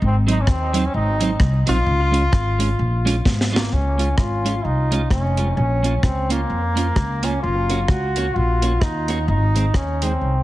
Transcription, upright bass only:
0.02 G#1
0.47 D#2
0.94 G#1
1.40 C2
1.68 A#1
1.86 C#2
2.33 G#1
2.79 A#1
3.26 G#1
3.72 C#2
4.18 G#1
4.65 C2
5.11 F1
5.57 A#1
6.03 C#2
6.50 F2
6.97 C#2
7.44 F#1
7.89 C#2
8.36 A#1
8.82 D#2
9.28 G#1
9.75 D#2
10.21 C2

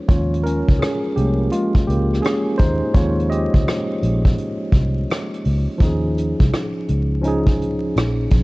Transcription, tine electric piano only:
0.08 F3 G#3 C#4 F4 C#5
0.43 C#4 A#4
0.79 C#4 G#4
1.16 F3 G#3 A#3 C#4 G4
1.52 G#3 F4
1.87 A#3 G4
2.22 C#4 G#4
2.58 D#4 C5
2.94 F3 G#3 C#4 F4 C#5
3.30 G4 D#5
5.78 F3 C#4
5.82 D#4 G#4
7.21 F3 C#4 D#4
7.27 G#4

